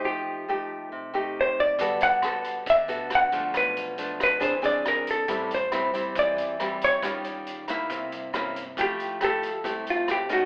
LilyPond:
<<
  \new Staff \with { instrumentName = "Hollow-body jazz guitar" } { \time 4/4 \key f \major \tempo 4 = 138 g'2 r4 c''8 d''8~ | d''8 fis''4. e''4 fis''4 | b'4. b'8 bis'8 d''8 bes'8 a'8~ | a'8 c''4. d''4. cis''8~ |
cis''8 r2. r8 | g'4 a'4. f'8 g'8 ges'8 | }
  \new Staff \with { instrumentName = "Nylon-string guitar" } { \time 4/4 \key f \major << { <a ees' g'>4 <a ees' g'>4. <a ees' g'>4. | <b fis' a'>4 <b fis' a'>4 r8 <b fis' a'>4 <f a d'>8~ | <f a d'>4 <f a d'>4 <bis d' gis'>8 <bis d' gis'>4. | <g c' e'>8 r8 <g c' e'>8 <g c' e'>4. <g c' e'>4 |
<g des' f'>4. <bes e'>4. <bes des' e'>8 r8 | <a e' g'>4 <a e' g'>8 r8 <a e' g'>4. <a des' ees'>8 | } \\ { f2 c2 | g2 d2 | b,2 e2 | a,2 e2 |
ees2 c2 | f2 c2 | } >> }
  \new Staff \with { instrumentName = "Upright bass" } { \clef bass \time 4/4 \key f \major r1 | g,,2 d,8 d,4. | b,,2 e,8 bis,,4. | a,,2 e,8 e,4. |
ees,2 c,8 g,4. | f,8 f,8 r4 c,2 | }
  \new DrumStaff \with { instrumentName = "Drums" } \drummode { \time 4/4 r4 r4 r4 r4 | <hh bd>8 hh8 <hh ss>8 hh8 <hh bd>8 hh8 <hh ss>8 hh8 | <hh bd ss>8 hh8 hh8 <hh ss>8 <hh bd>8 hh8 <hh ss>8 hh8 | <hh bd>8 hh8 <hh ss>8 hh8 <hh bd>8 hh8 <hh ss>8 hh8 |
<hh bd ss>8 hh8 hh8 <hh ss>8 <hh bd>8 hh8 <hh ss>8 hh8 | <hh bd>8 hh8 <hh ss>8 hh8 <hh bd>8 hh8 <hh ss>8 hh8 | }
>>